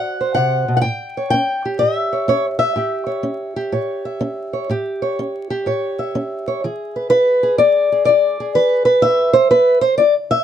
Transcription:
Already playing: A2 F#4 C5 F#5
0.21 C5
0.35 C3 F#5
0.68 B2
0.77 F#5
0.82 A2 G5
1.17 C#5
1.30 C#4 G5
1.65 G4
1.79 A2 D#5
1.96 E5
2.13 C#5
2.28 C#4 C#5
2.59 E5
2.76 A2 G4
3.06 C#5
3.23 C#4
3.56 G4
3.72 A2 C#5
4.05 E5
4.21 C#4
4.53 C#5
4.69 A2 G4
5.02 C#5
5.19 C#4
5.50 G4
5.66 A2 C#5
5.99 E5
6.15 C#4
6.48 C#5
6.64 E3 G#4
6.96 B4
7.10 E4 B4
7.43 G#4
7.58 B3 D5
7.92 G#4
8.05 E4 D5
8.40 G#4
8.55 E3 B4
8.85 B4
9.02 E4 E5
9.33 C5
9.51 B3 B4
9.81 C5
9.98 E4 D5
10.31 E5

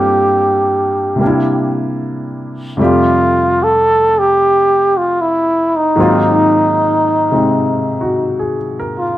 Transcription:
Already playing: G2 G3 A#3 C4 F4 G4 A4
1.16 C3 G3
1.21 A#3 D4
1.27 E4
2.77 F2 C3 G3 A3 D5
2.82 F4 G4
3.64 A4
4.19 G4
4.98 F4
5.21 E4
5.77 D#4
5.95 G#2 D#3 F#3 A#3
6.00 C4 F4
7.31 C3 G#3 C4 D#4
8.01 F#4
8.39 G#4
8.79 A#4
8.99 F4

